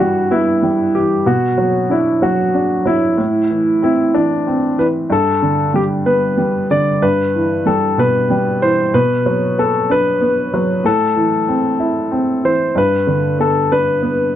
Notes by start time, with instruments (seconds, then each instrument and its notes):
Already playing: upright piano G2 E3
0.00 upright piano G3, grand piano F#4
0.31 upright piano B3, grand piano E4
0.63 upright piano G3
0.95 upright piano E3, grand piano G4
1.26 upright piano B2, grand piano F#4
1.58 upright piano F#3
1.90 upright piano D4, grand piano E4
2.22 upright piano F#3, grand piano F#4
2.54 upright piano D4
2.86 upright piano F#3, grand piano E4
3.18 upright piano A2
3.50 upright piano E3
3.82 upright piano C4, grand piano E4
4.14 upright piano E3, grand piano D4
4.47 upright piano C4
4.78 upright piano E3, grand piano B4
5.10 upright piano G2, grand piano A4
5.42 upright piano D3
5.74 upright piano G3, grand piano G4
6.06 upright piano B3, grand piano B4
6.38 upright piano G3
6.71 upright piano D3, grand piano D5
7.02 upright piano G2, grand piano B4
7.35 upright piano E3
7.66 upright piano G3, grand piano A4
7.98 upright piano B2, grand piano B4
8.30 upright piano G3
8.62 upright piano E3, grand piano C5
8.94 upright piano B2, grand piano B4
9.26 upright piano F#3
9.58 upright piano B3, grand piano A4
9.90 upright piano D4, grand piano B4
10.21 upright piano B3
10.54 upright piano F#3
10.84 upright piano A2, grand piano A4
11.16 upright piano E3
11.48 upright piano C4
11.79 upright piano E4
12.11 upright piano C4
12.44 upright piano E3, grand piano C5
12.75 upright piano G2, grand piano B4
13.07 upright piano D3
13.39 upright piano B3, grand piano A4
13.72 upright piano D4, grand piano B4
14.03 upright piano B3